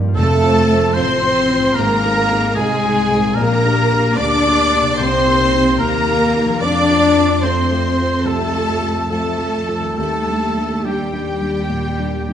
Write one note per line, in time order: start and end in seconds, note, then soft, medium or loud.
0.00 0.17 G2 medium
0.00 0.18 A#2 medium
0.00 0.11 D#3 medium
0.00 1.70 F3 medium
0.00 1.61 C4 medium
0.00 0.14 D#4 medium
0.00 0.19 D#4 medium
0.00 0.16 A#4 medium
0.00 0.20 A#4 medium
0.00 0.18 D5 medium
0.00 0.19 D5 medium
0.08 1.75 F4 medium
0.12 0.96 F2 medium
0.12 0.95 A4 loud
0.12 0.92 A4 loud
0.12 3.38 C5 medium
0.12 0.92 A5 loud
0.17 0.42 F2 medium
0.17 1.32 F2 loud
0.17 0.92 A3 loud
0.17 0.92 A4 loud
0.17 0.98 A5 loud
0.43 0.67 C4 medium
0.43 0.67 F4 medium
0.43 0.68 C5 medium
0.70 0.94 C4 medium
0.70 0.94 F4 medium
0.70 0.94 C5 medium
0.94 1.76 A1 medium
0.94 1.76 C4 loud
0.94 1.20 C4 medium
0.94 1.20 F4 medium
0.94 1.76 C5 loud
0.94 1.76 C5 medium
0.94 1.21 C5 medium
0.94 1.77 C5 loud
0.94 1.76 C6 loud
0.94 1.78 C6 loud
1.22 1.46 C4 medium
1.22 1.47 F4 medium
1.22 1.47 C5 medium
1.50 1.74 C4 medium
1.50 1.74 F4 medium
1.50 1.74 C5 medium
1.58 3.31 G#2 medium
1.62 3.33 C4 medium
1.67 3.35 D#4 medium
1.71 3.37 G#4 medium
1.71 2.54 A#4 loud
1.75 2.55 G#1 medium
1.75 2.03 G#2 medium
1.75 2.56 A#3 loud
1.75 2.56 A#4 loud
1.75 2.57 A#4 loud
1.75 2.59 A#5 loud
1.75 2.57 A#5 loud
2.04 2.28 C4 medium
2.04 2.28 D#4 medium
2.04 2.28 G#4 medium
2.31 2.55 C4 medium
2.31 2.55 D#4 medium
2.31 2.55 G#4 medium
2.55 3.36 C2 medium
2.55 3.36 G#3 loud
2.55 3.37 G#3 loud
2.55 2.81 C4 medium
2.55 2.82 D#4 medium
2.55 3.36 G#4 loud
2.55 3.37 G#4 medium
2.55 3.38 G#4 loud
2.55 3.37 G#5 loud
2.55 3.35 G#5 loud
2.59 2.82 G#4 medium
2.85 3.08 C4 medium
2.85 3.08 D#4 medium
2.85 3.08 G#4 medium
3.11 3.34 C4 medium
3.11 3.35 D#4 medium
3.11 3.35 G#4 medium
3.18 4.93 A#2 medium
3.23 4.85 A#3 medium
3.27 4.98 D4 medium
3.32 4.93 G4 medium
3.32 4.19 A#4 loud
3.36 4.16 A#1 medium
3.36 3.63 A#1 medium
3.36 4.16 A#3 medium
3.36 4.17 A#3 loud
3.36 4.16 A#4 loud
3.36 4.18 A#4 loud
3.36 4.19 A#5 loud
3.36 4.18 A#5 loud
3.65 3.89 A#3 medium
3.65 3.88 D4 medium
3.65 3.89 G4 medium
3.92 4.16 A#3 medium
3.92 4.16 D4 medium
3.92 4.17 G4 medium
4.16 4.97 D2 medium
4.16 4.43 A#3 medium
4.16 4.99 D4 loud
4.16 4.43 D4 medium
4.16 4.44 G4 medium
4.16 4.99 D5 loud
4.16 4.97 D6 loud
4.16 5.01 D6 loud
4.47 4.71 A#3 medium
4.47 4.71 D4 medium
4.47 4.71 G4 medium
4.74 4.97 A#3 medium
4.74 4.98 D4 medium
4.74 4.98 G4 medium
4.81 6.57 C3 medium
4.86 6.59 A#3 medium
4.90 6.61 D#4 medium
4.95 6.63 G4 medium
4.95 5.79 C5 loud
4.95 5.80 C5 loud
4.95 5.80 C6 loud
4.99 5.79 C2 medium
4.99 5.26 C2 medium
4.99 5.81 C4 medium
4.99 5.79 C4 loud
4.99 5.79 C5 loud
4.99 5.79 C6 loud
5.26 5.51 A#3 medium
5.26 5.51 D#4 medium
5.26 5.51 G4 medium
5.53 5.78 A#3 medium
5.53 5.78 D#4 medium
5.53 5.78 G4 medium
5.79 6.62 D#2 medium
5.79 6.05 A#3 medium
5.79 6.63 A#3 loud
5.79 6.05 D#4 medium
5.79 6.05 G4 medium
5.79 6.60 A#4 medium
5.79 6.33 A#4 loud
5.79 6.62 A#4 loud
5.79 6.62 A#5 loud
5.79 6.33 A#5 medium
6.07 6.32 A#3 medium
6.07 6.32 D#4 medium
6.07 6.32 G4 medium
6.35 6.59 A#3 medium
6.35 6.59 D#4 soft
6.35 6.60 G4 medium
6.45 9.93 F3 medium
6.50 9.95 A3 medium
6.54 9.97 C4 medium
6.58 9.93 F2 medium
6.58 6.88 F2 medium
6.58 10.00 F4 medium
6.58 7.41 D5 loud
6.58 7.43 D5 loud
6.58 7.44 D5 loud
6.58 7.41 D6 loud
6.58 7.45 D6 loud
6.63 7.42 D4 loud
6.63 7.44 D4 loud
6.89 7.14 A3 soft
6.89 7.14 C4 medium
6.89 7.14 F4 medium
7.16 7.41 A3 soft
7.16 7.41 C4 medium
7.16 7.42 F4 medium
7.42 7.68 A3 medium
7.42 8.26 C4 medium
7.42 7.68 C4 medium
7.42 8.26 C4 medium
7.42 7.68 F4 medium
7.42 8.28 C5 medium
7.42 8.24 C5 medium
7.42 8.26 C5 medium
7.42 8.25 C6 medium
7.42 8.30 C6 medium
7.71 7.96 A3 medium
7.71 7.96 C4 medium
7.71 7.96 F4 medium
7.99 8.24 A3 soft
7.99 8.24 C4 soft
7.99 8.24 F4 medium
8.25 8.53 C2 medium
8.25 9.08 A3 medium
8.25 8.93 A3 medium
8.25 9.09 A4 medium
8.25 9.10 A4 medium
8.25 9.09 A4 medium
8.25 9.09 A5 loud
8.25 9.12 A5 medium
8.54 8.79 A3 medium
8.54 8.80 C4 medium
8.54 8.80 F4 medium
8.82 9.08 A3 medium
8.82 9.08 C4 soft
8.82 9.08 F4 medium
9.09 9.96 A3 medium
9.09 9.36 A3 medium
9.09 9.96 A3 medium
9.09 9.36 C4 medium
9.09 9.36 F4 medium
9.09 9.96 A4 medium
9.09 9.97 A4 medium
9.09 9.96 A5 loud
9.09 9.97 A5 medium
9.37 9.64 A3 soft
9.37 9.65 C4 soft
9.37 9.65 F4 medium
9.68 9.95 A3 soft
9.68 9.95 C4 soft
9.68 9.95 F4 soft
9.80 12.33 D#3 medium
9.84 12.33 G3 medium
9.93 12.33 G4 medium
9.93 10.84 A5 medium
9.97 12.33 D#2 medium
9.97 10.27 D#2 medium
9.97 10.84 A3 medium
9.97 10.85 A3 medium
9.97 10.87 A4 medium
9.97 10.85 A4 medium
9.97 10.84 A5 medium
10.27 10.54 G3 soft
10.27 10.54 D4 soft
10.27 10.54 G4 soft
10.56 10.83 G3 soft
10.56 10.83 D4 soft
10.56 10.83 G4 soft
10.84 12.33 G3 medium
10.84 11.11 G3 medium
10.84 12.33 G3 medium
10.84 11.11 D4 medium
10.84 11.12 G4 medium
10.84 12.33 G4 medium
10.84 12.33 G5 medium
10.89 12.33 G4 medium
11.13 11.39 G3 soft
11.13 11.40 D4 soft
11.13 11.40 G4 medium
11.41 11.68 G3 soft
11.41 11.68 D4 soft
11.41 11.68 G4 medium
11.69 11.99 A#2 medium
11.99 12.26 G3 soft
11.99 12.26 D4 medium
11.99 12.27 G4 medium
12.29 12.33 G3 soft
12.29 12.33 D4 soft
12.29 12.33 G4 soft